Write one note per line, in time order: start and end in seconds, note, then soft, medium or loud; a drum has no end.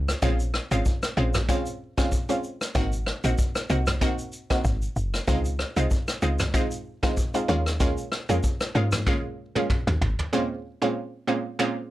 0.00 0.14 C#2 loud
0.08 cross-stick medium
0.08 shaker medium
0.22 0.59 A#1 loud
0.22 0.40 G#3 loud
0.22 0.40 C4 medium
0.22 0.40 C#4 medium
0.22 0.40 F4 loud
0.22 kick loud
0.22 shaker medium
0.40 shaker medium
0.54 cross-stick loud
0.71 0.82 G#1 loud
0.71 0.86 G#3 medium
0.71 0.86 C4 medium
0.71 0.86 C#4 medium
0.71 0.86 F4 medium
0.71 shaker medium
0.85 kick loud
0.85 shaker medium
1.03 cross-stick medium
1.03 shaker medium
1.17 1.54 A#1 loud
1.17 1.35 G#3 medium
1.17 1.35 C4 medium
1.17 1.35 C#4 medium
1.17 1.35 F4 medium
1.34 cross-stick loud
1.34 mid tom medium
1.34 shaker medium
1.49 1.66 G#3 medium
1.49 1.66 C4 medium
1.49 1.67 C#4 medium
1.49 1.67 F4 loud
1.49 kick loud
1.49 shaker medium
1.66 shaker medium
1.97 2.12 G#3 medium
1.97 2.12 C4 medium
1.97 2.12 C#4 medium
1.97 2.12 F4 medium
1.97 kick loud
1.97 cross-stick loud
1.97 shaker medium
2.12 kick medium
2.12 shaker medium
2.29 2.44 G#3 medium
2.29 2.44 C4 medium
2.29 2.44 C#4 medium
2.29 2.44 F4 medium
2.29 shaker medium
2.44 shaker soft
2.61 cross-stick medium
2.61 shaker medium
2.75 3.12 G#1 loud
2.75 2.93 A#3 loud
2.75 2.93 C4 medium
2.75 2.93 D#4 medium
2.75 2.93 F#4 loud
2.75 kick loud
2.75 shaker medium
2.92 shaker medium
3.06 cross-stick medium
3.24 3.35 A#1 loud
3.24 3.39 A#3 medium
3.24 3.39 C4 medium
3.24 3.39 D#4 medium
3.24 3.39 F#4 medium
3.24 shaker medium
3.38 kick medium
3.38 shaker medium
3.55 cross-stick medium
3.55 shaker medium
3.70 4.06 C2 loud
3.70 3.87 A#3 medium
3.70 3.87 C4 medium
3.70 3.88 D#4 medium
3.70 3.88 F#4 medium
3.70 shaker medium
3.86 cross-stick loud
3.86 mid tom medium
3.86 shaker medium
4.01 4.46 A#3 medium
4.01 4.46 C4 medium
4.01 4.46 D#4 medium
4.01 4.46 F#4 loud
4.01 kick loud
4.01 shaker medium
4.19 shaker medium
4.32 shaker soft
4.50 4.65 A#3 medium
4.50 4.65 C4 medium
4.50 4.65 D#4 medium
4.50 4.65 F#4 medium
4.50 kick loud
4.50 cross-stick loud
4.50 shaker medium
4.64 4.88 G#1 loud
4.64 kick medium
4.64 shaker medium
4.82 shaker medium
4.96 5.20 F#1 medium
4.96 shaker soft
5.14 cross-stick medium
5.14 shaker medium
5.28 5.64 C#2 loud
5.28 5.45 G#3 loud
5.28 5.45 C4 medium
5.28 5.45 D#4 medium
5.28 5.46 F4 loud
5.28 kick loud
5.28 shaker medium
5.45 shaker medium
5.59 cross-stick medium
5.76 5.87 C2 loud
5.76 5.91 G#3 medium
5.76 5.91 C4 medium
5.76 5.91 D#4 medium
5.76 5.91 F4 medium
5.76 shaker medium
5.91 kick medium
5.91 shaker medium
6.08 cross-stick loud
6.08 shaker medium
6.22 6.59 C#2 medium
6.22 6.40 G#3 medium
6.22 6.40 C4 medium
6.22 6.40 D#4 medium
6.22 6.40 F4 medium
6.22 shaker medium
6.39 cross-stick loud
6.39 mid tom medium
6.39 shaker medium
6.54 6.72 G#3 medium
6.54 6.72 C4 medium
6.54 6.72 D#4 medium
6.54 6.72 F4 loud
6.54 kick loud
6.54 shaker medium
6.71 shaker medium
7.03 7.17 G#3 medium
7.03 7.18 C4 medium
7.03 7.18 D#4 medium
7.03 7.18 F4 medium
7.03 kick loud
7.03 cross-stick loud
7.03 shaker medium
7.17 kick medium
7.17 shaker medium
7.34 7.47 G#3 medium
7.34 7.49 C4 medium
7.34 7.49 D#4 medium
7.34 7.48 F4 medium
7.34 shaker medium
7.48 7.96 D#2 loud
7.48 7.78 G#3 medium
7.48 7.78 A#3 medium
7.48 7.78 C#4 medium
7.48 7.78 F4 loud
7.66 cross-stick medium
7.66 shaker medium
7.80 7.98 G#3 medium
7.80 7.98 A#3 medium
7.80 7.98 C#4 medium
7.80 7.98 F4 loud
7.80 kick loud
7.80 shaker medium
7.97 shaker medium
8.12 cross-stick medium
8.29 8.40 F2 medium
8.29 8.44 G#3 medium
8.29 8.44 A#3 medium
8.29 8.44 C#4 medium
8.29 8.44 F4 medium
8.29 shaker medium
8.43 kick medium
8.43 shaker medium
8.61 cross-stick medium
8.61 shaker medium
8.75 9.11 G#2 medium
8.75 8.93 G#3 medium
8.75 8.93 A#3 medium
8.75 8.93 C#4 medium
8.75 8.93 F4 medium
8.92 cross-stick loud
8.92 mid tom medium
8.92 shaker medium
9.06 9.51 G#3 medium
9.06 9.51 A#3 medium
9.06 9.52 C#4 medium
9.06 9.52 F4 loud
9.06 kick loud
9.06 high tom medium
9.55 9.70 G#3 medium
9.55 9.70 A#3 medium
9.55 9.70 C#4 medium
9.55 9.70 F4 medium
9.55 mid tom medium
9.70 kick medium
9.70 mid tom medium
9.87 9.98 D#2 loud
9.87 mid tom medium
10.01 10.14 G#1 medium
10.01 floor tom loud
10.19 floor tom medium
10.33 10.50 A#2 loud
10.33 10.51 G#3 medium
10.33 10.51 C4 medium
10.33 10.51 C#4 medium
10.33 10.51 F4 loud
10.82 10.96 A#2 medium
10.82 10.96 G#3 medium
10.82 10.97 C4 medium
10.82 10.97 C#4 medium
10.82 10.97 F4 medium
11.27 11.45 A#2 medium
11.27 11.45 G#3 medium
11.27 11.45 C4 medium
11.27 11.45 C#4 medium
11.27 11.46 F4 medium
11.59 11.77 A#2 loud
11.59 11.77 G#3 medium
11.59 11.77 C4 medium
11.59 11.77 C#4 medium
11.59 11.77 F4 loud